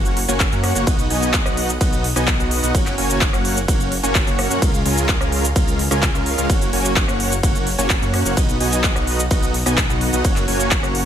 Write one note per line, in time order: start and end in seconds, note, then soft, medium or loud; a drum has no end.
0.00 0.26 F#1 medium
0.00 0.18 A#3 medium
0.00 0.18 C#4 medium
0.00 0.18 F#4 medium
0.00 0.18 C#5 medium
0.00 0.18 F#5 medium
0.05 closed hi-hat soft
0.05 shaker soft
0.17 open hi-hat loud
0.28 0.50 F#1 loud
0.28 0.48 A#3 medium
0.28 0.48 C#4 medium
0.28 0.48 F#4 medium
0.28 0.48 C#5 medium
0.28 0.48 G#5 medium
0.28 closed hi-hat medium
0.28 shaker medium
0.40 kick loud
0.40 clap loud
0.40 closed hi-hat medium
0.40 ride medium
0.40 shaker medium
0.52 0.73 F#2 loud
0.52 0.73 A#3 loud
0.52 0.73 C#4 medium
0.52 0.73 F#4 medium
0.52 0.73 C#5 medium
0.52 0.73 F#5 loud
0.52 shaker soft
0.64 cross-stick medium
0.64 open hi-hat loud
0.75 0.85 F#1 loud
0.75 0.85 A#3 medium
0.75 0.85 C#4 medium
0.75 0.85 F#4 medium
0.75 0.85 C#5 medium
0.75 0.85 F#5 medium
0.75 closed hi-hat medium
0.75 shaker medium
0.87 1.08 B3 medium
0.87 1.08 F#4 medium
0.87 1.08 F#5 medium
0.87 kick loud
0.87 closed hi-hat medium
0.87 ride medium
0.87 shaker medium
0.99 closed hi-hat soft
0.99 shaker soft
1.10 1.43 B1 loud
1.10 1.43 B3 loud
1.10 1.43 D#4 medium
1.10 1.43 F#4 medium
1.10 1.43 D#5 loud
1.10 1.43 G#5 loud
1.10 open hi-hat loud
1.22 closed hi-hat medium
1.22 shaker medium
1.34 kick loud
1.34 clap loud
1.34 closed hi-hat medium
1.34 ride medium
1.34 shaker medium
1.46 1.78 B1 loud
1.46 1.70 B3 medium
1.46 1.70 D#4 medium
1.46 1.70 F#4 medium
1.46 1.70 D#5 medium
1.46 1.70 F#5 medium
1.46 cross-stick medium
1.46 shaker soft
1.57 open hi-hat loud
1.69 closed hi-hat medium
1.69 shaker medium
1.81 2.14 B1 medium
1.81 2.06 B3 medium
1.81 2.06 D#4 medium
1.81 2.06 F#4 medium
1.81 2.06 D#5 medium
1.81 2.06 F#5 loud
1.81 kick loud
1.81 closed hi-hat medium
1.81 ride medium
1.81 shaker medium
1.93 closed hi-hat soft
1.93 shaker soft
2.04 open hi-hat loud
2.16 2.37 B1 loud
2.16 2.36 B3 medium
2.16 2.36 D#4 medium
2.16 2.36 F#4 medium
2.16 2.36 D#5 medium
2.16 2.36 G#5 medium
2.16 cross-stick medium
2.16 closed hi-hat medium
2.16 shaker medium
2.28 kick loud
2.28 clap loud
2.28 closed hi-hat medium
2.28 ride medium
2.28 shaker medium
2.39 2.61 B1 loud
2.39 2.60 B3 medium
2.39 2.60 D#4 medium
2.39 2.60 F#4 medium
2.39 2.60 D#5 medium
2.39 2.60 F#5 loud
2.39 shaker soft
2.51 open hi-hat loud
2.63 2.72 B1 medium
2.63 2.73 B3 medium
2.63 2.73 D#4 medium
2.63 2.73 F#4 medium
2.63 2.73 D#5 medium
2.63 2.73 F#5 medium
2.63 closed hi-hat soft
2.63 shaker medium
2.75 2.95 C#4 medium
2.75 2.95 C#5 medium
2.75 kick loud
2.75 closed hi-hat medium
2.75 ride medium
2.75 shaker medium
2.86 clap soft
2.86 closed hi-hat soft
2.86 shaker soft
2.98 3.31 F#1 loud
2.98 3.30 A#3 loud
2.98 3.30 C#4 medium
2.98 3.30 F#4 loud
2.98 3.30 C#5 medium
2.98 3.30 G#5 loud
2.98 open hi-hat loud
3.10 closed hi-hat medium
3.10 shaker medium
3.21 kick loud
3.21 clap loud
3.21 closed hi-hat medium
3.21 ride medium
3.21 shaker medium
3.33 3.66 F#1 loud
3.33 3.58 A#3 medium
3.33 3.58 C#4 medium
3.33 3.58 F#4 medium
3.33 3.58 C#5 medium
3.33 3.58 F#5 loud
3.33 cross-stick medium
3.33 shaker soft
3.45 open hi-hat loud
3.57 closed hi-hat medium
3.57 shaker medium
3.68 3.93 A#3 medium
3.68 3.93 C#4 medium
3.68 3.93 F#4 medium
3.68 3.93 C#5 medium
3.68 3.93 F#5 medium
3.68 kick loud
3.68 closed hi-hat medium
3.68 ride medium
3.68 shaker medium
3.80 closed hi-hat soft
3.80 shaker soft
3.92 open hi-hat loud
4.03 4.25 F#1 loud
4.03 4.23 A#3 medium
4.03 4.23 C#4 medium
4.03 4.23 F#4 medium
4.03 4.23 C#5 medium
4.03 4.23 G#5 loud
4.03 closed hi-hat medium
4.03 shaker medium
4.15 kick loud
4.15 clap loud
4.15 closed hi-hat medium
4.15 ride medium
4.15 shaker medium
4.27 4.48 F#1 loud
4.27 4.47 A#3 loud
4.27 4.48 C#4 medium
4.27 4.47 F#4 medium
4.27 4.48 C#5 medium
4.27 4.47 F#5 loud
4.27 closed hi-hat soft
4.27 shaker soft
4.39 cross-stick medium
4.39 open hi-hat loud
4.50 4.60 F#2 loud
4.50 4.60 A#3 medium
4.50 4.60 C#4 medium
4.50 4.60 F#4 medium
4.50 4.60 C#5 medium
4.50 4.60 F#5 medium
4.50 closed hi-hat soft
4.50 shaker medium
4.62 4.83 C#2 medium
4.62 4.83 G#3 medium
4.62 4.83 C#4 medium
4.62 4.83 F4 medium
4.62 4.83 A#4 medium
4.62 4.83 F5 medium
4.62 kick loud
4.62 closed hi-hat medium
4.62 ride medium
4.62 shaker medium
4.74 closed hi-hat soft
4.74 shaker soft
4.85 5.18 C#2 loud
4.85 5.18 G#3 loud
4.85 5.18 C#4 medium
4.85 5.18 F4 loud
4.85 5.18 A#4 medium
4.85 5.18 G#5 loud
4.85 open hi-hat loud
4.97 closed hi-hat medium
4.97 shaker medium
5.09 kick loud
5.09 clap loud
5.09 closed hi-hat medium
5.09 ride medium
5.09 shaker medium
5.21 5.53 C#2 loud
5.21 5.45 G#3 medium
5.21 5.45 C#4 medium
5.21 5.45 F4 medium
5.21 5.45 A#4 medium
5.21 5.45 F5 medium
5.21 cross-stick medium
5.21 shaker soft
5.32 open hi-hat loud
5.44 closed hi-hat medium
5.44 shaker medium
5.56 5.89 C#2 loud
5.56 5.81 G#3 medium
5.56 5.81 C#4 medium
5.56 5.81 F4 medium
5.56 5.81 A#4 medium
5.56 5.81 F5 medium
5.56 kick loud
5.56 closed hi-hat medium
5.56 ride medium
5.56 shaker medium
5.68 closed hi-hat soft
5.68 shaker soft
5.79 open hi-hat loud
5.91 6.12 C#2 loud
5.91 6.11 G#3 medium
5.91 6.11 C#4 medium
5.91 6.11 F4 medium
5.91 6.11 A#4 medium
5.91 6.11 G#5 medium
5.91 cross-stick medium
5.91 closed hi-hat medium
5.91 shaker medium
6.03 kick loud
6.03 clap loud
6.03 closed hi-hat medium
6.03 ride medium
6.03 shaker medium
6.14 6.36 C#2 loud
6.14 6.35 G#3 loud
6.14 6.35 C#4 medium
6.14 6.35 F4 medium
6.14 6.35 A#4 medium
6.14 6.35 F5 loud
6.14 shaker soft
6.26 open hi-hat loud
6.38 6.47 C#2 loud
6.38 6.48 G#3 medium
6.38 6.48 C#4 medium
6.38 6.48 F4 medium
6.38 6.48 A#4 medium
6.38 6.48 F5 medium
6.38 closed hi-hat medium
6.38 shaker medium
6.50 6.71 F#1 medium
6.50 6.70 A#3 medium
6.50 6.70 C#4 medium
6.50 6.70 F#4 medium
6.50 6.70 C#5 medium
6.50 kick loud
6.50 closed hi-hat medium
6.50 ride medium
6.50 shaker medium
6.61 closed hi-hat soft
6.61 shaker soft
6.73 7.06 F#1 loud
6.73 7.05 A#3 loud
6.73 7.05 C#4 medium
6.73 7.05 F#4 medium
6.73 7.05 C#5 medium
6.73 7.05 G#5 loud
6.73 open hi-hat loud
6.85 closed hi-hat medium
6.85 shaker medium
6.96 kick loud
6.96 clap loud
6.96 closed hi-hat medium
6.96 ride medium
6.96 shaker medium
7.08 7.41 F#1 loud
7.08 7.33 A#3 medium
7.08 7.33 C#4 medium
7.08 7.33 F#4 medium
7.08 7.33 C#5 medium
7.08 7.33 F#5 loud
7.08 cross-stick medium
7.08 shaker soft
7.20 open hi-hat loud
7.32 closed hi-hat medium
7.32 shaker medium
7.43 7.76 F#1 loud
7.43 7.68 A#3 medium
7.43 7.68 C#4 medium
7.43 7.68 F#4 medium
7.43 7.68 C#5 medium
7.43 7.68 F#5 medium
7.43 kick loud
7.43 closed hi-hat medium
7.43 ride medium
7.43 shaker medium
7.55 closed hi-hat soft
7.55 shaker soft
7.67 open hi-hat loud
7.78 8.00 F#1 loud
7.78 7.98 A#3 medium
7.78 7.98 C#4 medium
7.78 7.98 F#4 medium
7.78 7.98 C#5 medium
7.78 7.98 G#5 loud
7.78 closed hi-hat medium
7.78 shaker medium
7.90 kick loud
7.90 clap loud
7.90 closed hi-hat medium
7.90 ride medium
7.90 shaker medium
8.02 8.23 F#2 loud
8.02 8.23 A#3 loud
8.02 8.23 C#4 medium
8.02 8.23 F#4 medium
8.02 8.23 C#5 medium
8.02 8.23 F#5 loud
8.02 shaker soft
8.14 cross-stick medium
8.14 open hi-hat loud
8.25 8.35 F#1 loud
8.25 8.35 A#3 medium
8.25 8.35 C#4 medium
8.25 8.35 F#4 medium
8.25 8.35 C#5 medium
8.25 8.35 F#5 medium
8.25 closed hi-hat medium
8.25 shaker medium
8.37 8.58 B1 medium
8.37 8.58 B3 medium
8.37 8.58 D#4 medium
8.37 8.58 F#4 medium
8.37 8.58 D#5 medium
8.37 8.58 F#5 medium
8.37 kick loud
8.37 closed hi-hat medium
8.37 ride medium
8.37 shaker medium
8.49 closed hi-hat soft
8.49 shaker soft
8.60 8.93 B1 loud
8.60 8.93 B3 loud
8.60 8.93 D#4 medium
8.60 8.93 F#4 medium
8.60 8.93 D#5 medium
8.60 8.93 G#5 loud
8.60 open hi-hat loud
8.72 closed hi-hat medium
8.72 shaker medium
8.84 kick loud
8.84 clap loud
8.84 closed hi-hat medium
8.84 ride medium
8.84 shaker medium
8.96 9.28 B1 loud
8.96 9.20 B3 medium
8.96 9.20 D#4 medium
8.96 9.20 F#4 medium
8.96 9.20 D#5 medium
8.96 9.20 F#5 medium
8.96 cross-stick medium
8.96 shaker soft
9.07 open hi-hat loud
9.19 closed hi-hat medium
9.19 shaker medium
9.31 9.64 B1 loud
9.31 9.56 B3 medium
9.31 9.56 D#4 medium
9.31 9.56 F#4 medium
9.31 9.56 D#5 medium
9.31 9.56 F#5 medium
9.31 kick loud
9.31 closed hi-hat medium
9.31 ride medium
9.31 shaker medium
9.43 closed hi-hat soft
9.43 shaker soft
9.54 open hi-hat loud
9.66 9.87 B1 loud
9.66 9.86 B3 medium
9.66 9.86 D#4 medium
9.66 9.86 F#4 medium
9.66 9.86 D#5 medium
9.66 9.86 G#5 loud
9.66 cross-stick medium
9.66 closed hi-hat medium
9.66 shaker medium
9.78 kick loud
9.78 clap loud
9.78 closed hi-hat medium
9.78 ride medium
9.78 shaker medium
9.89 10.11 B1 loud
9.89 10.10 B3 loud
9.89 10.10 D#4 medium
9.89 10.10 F#4 medium
9.89 10.10 D#5 medium
9.89 10.10 F#5 loud
9.89 shaker soft
10.01 open hi-hat loud
10.13 10.22 B1 loud
10.13 10.23 B3 medium
10.13 10.23 D#4 medium
10.13 10.23 F#4 medium
10.13 10.23 D#5 medium
10.13 10.23 F#5 medium
10.13 closed hi-hat medium
10.13 shaker medium
10.25 10.45 A#3 medium
10.25 10.45 C#4 medium
10.25 10.45 F#4 medium
10.25 10.45 C#5 medium
10.25 kick loud
10.25 closed hi-hat medium
10.25 ride medium
10.25 shaker medium
10.36 clap soft
10.36 closed hi-hat soft
10.36 shaker soft
10.48 10.81 F#1 loud
10.48 10.80 A#3 loud
10.48 10.80 C#4 loud
10.48 10.80 F#4 medium
10.48 10.80 C#5 loud
10.48 10.80 G#5 loud
10.48 open hi-hat loud
10.60 closed hi-hat medium
10.60 shaker medium
10.71 kick loud
10.71 clap loud
10.71 closed hi-hat medium
10.71 ride medium
10.71 shaker medium
10.83 11.05 F#1 loud
10.83 11.05 A#3 medium
10.83 11.05 C#4 medium
10.83 11.05 F#4 medium
10.83 11.05 C#5 medium
10.83 11.05 F#5 loud
10.83 cross-stick medium
10.83 shaker soft
10.95 open hi-hat loud